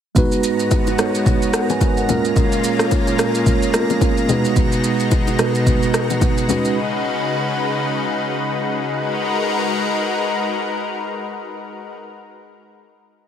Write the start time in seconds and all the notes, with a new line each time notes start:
0.15 G#2 G#3 B3 D#4 F#4 B4 A#5, kick, low conga, shaker
0.32 shaker
0.44 shaker
0.60 shaker
0.71 kick, high bongo, shaker
0.87 high bongo, shaker
0.97 G#3 B3 D#4 F#4 C#5, cross-stick, shaker
1.15 shaker
1.26 kick, low conga, shaker
1.42 shaker
1.54 A#4 F#5, cross-stick, shaker
1.70 B4 G#5, low bongo, shaker
1.81 kick, high bongo, shaker
1.97 A#4 F#5, shaker
2.08 A#2 G#3 A#3 C#4 F4 A#4, high bongo, low bongo, low conga, shaker
2.25 shaker
2.36 kick, low conga, shaker
2.52 shaker
2.64 shaker
2.79 G#3 A#3 C#4 F4 C#5, cross-stick, shaker
2.91 kick, high bongo, shaker
3.07 high bongo, shaker
3.18 G#3 A#3 C#4 F4 A#4, cross-stick, shaker
3.35 shaker
3.46 kick, low conga, shaker
3.62 shaker
3.73 G#3 A#3 B3 F4 A#4, cross-stick, shaker
3.81 C#4
3.90 low bongo, shaker
4.01 kick, high bongo, shaker
4.17 shaker
4.28 B2 G#3 B3 D#4 F#4 B4, high bongo, low bongo, low conga, shaker
4.45 shaker
4.56 kick, low conga, shaker
4.72 shaker
4.84 shaker
5.00 shaker
5.11 kick, high bongo, shaker
5.27 high bongo, shaker
5.38 B2 G#3 B3 D#4 F#4 B4, cross-stick, shaker
5.55 shaker
5.67 kick, low conga, shaker
5.83 shaker
5.94 cross-stick, shaker
6.10 low bongo, shaker
6.21 kick, high bongo, shaker
6.38 shaker
6.48 C#3 G#3 C#4 D#4 F#4 B4, high bongo, low bongo, low conga, shaker
6.65 shaker
8.97 G#3 D#4 F#4 A#4 B4